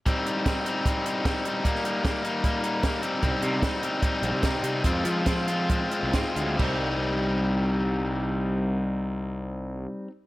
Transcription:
<<
  \new Staff \with { instrumentName = "Overdriven electric guitar" } { \time 4/4 \key c \minor \tempo 4 = 144 <g c' ees'>8 <c' ees'>8 <g c' ees'>8 <g c' ees'>8 <g c' ees'>8 <c' ees'>8 <g c' ees'>8 <c' ees'>8 | <g bes ees'>8 <bes ees'>8 <g bes ees'>8 <g bes ees'>8 <g bes ees'>8 <bes ees'>8 <g bes ees'>8 <g c' ees'>8 | <g c' ees'>8 <c' ees'>8 <g c' ees'>8 <g c' ees'>8 <g c' ees'>8 <c' ees'>8 <g c' ees'>8 <c' ees'>8 | <aes c' f'>8 <c' f'>8 <aes c' f'>8 <aes c' f'>8 <aes c' f'>8 <c' f'>8 <aes c' f'>8 <c' f'>8 |
<g c' ees'>1~ | <g c' ees'>1 | }
  \new Staff \with { instrumentName = "Picked electric bass" } { \clef bass \time 4/4 \key c \minor r1 | r1 | c,16 r16 c8 r4. bes,,16 c8 r16 c8 | f,8 f2 r16 c,16 aes,16 r16 d,8 |
c,1~ | c,1 | }
  \new DrumStaff \with { instrumentName = "Drums" } \drummode { \time 4/4 <hh bd>8 hh8 <hh bd sn>8 hh8 <hh bd>8 hh8 <hh bd sn>8 hh8 | <hh bd>16 sn16 hh8 <hh bd sn>8 hh8 <hh bd>8 hh8 <hh bd sn>8 hh8 | <hh bd>8 hh8 <hh bd sn>8 hh8 <hh bd>8 hh8 <hh bd sn>8 hh8 | <hh bd>8 hh8 <hh bd sn>8 hh8 <hh bd>8 hh8 <hh bd sn>8 hh8 |
<cymc bd>4 r4 r4 r4 | r4 r4 r4 r4 | }
>>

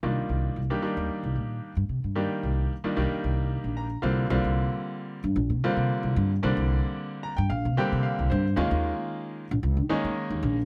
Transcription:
<<
  \new Staff \with { instrumentName = "Grand piano" } { \time 4/4 \key c \minor \tempo 4 = 113 r1 | r2. bes''8 f''8 | r1 | r4. bes''16 g''16 f''8 g''8 f''8 c''8 |
r1 | }
  \new Staff \with { instrumentName = "Grand piano" } { \time 4/4 \key c \minor <ees g bes d' f'>4 r16 <ees g bes d' g'>16 <ees g bes d' g'>4.~ <ees g bes d' g'>16 r8. | <ees g bes d' g'>4 r16 <ees g bes d' f'>16 <ees g bes d' g'>4.~ <ees g bes d' g'>16 r16 <d g bes c' f'>8 | <d g bes c' f'>4.~ <d g bes c' f'>16 r8. <d g bes c' f'>4~ <d g bes c' f'>16 r16 | <d g bes c' d'>4.~ <d g bes c' d'>16 r8. <d g bes c' g'>4~ <d g bes c' g'>16 r16 |
<ees aes bes des' f'>4.~ <ees aes bes des' f'>16 r8. <ees aes bes des' ees'>4~ <ees aes bes des' ees'>16 r16 | }
  \new Staff \with { instrumentName = "Upright bass" } { \clef bass \time 4/4 \key c \minor c,16 r16 c,8 c,16 r8 ees,16 r16 c,16 bes,8 r16 g,16 c16 g,16~ | g,16 r16 c,8 r8 c,16 r16 c,8. bes,,8. c,8 | c,16 c,8 r4 g,16 bes,,16 c16 r16 c16 r16 c,16 g,8 | c,16 c,8 r4 g,16 bes,,16 c16 r16 c16 r16 c,16 g,8 |
ees,16 ees,8 r4 bes,,16 des,16 ees16 r16 ees16 r16 ees,16 bes,,8 | }
>>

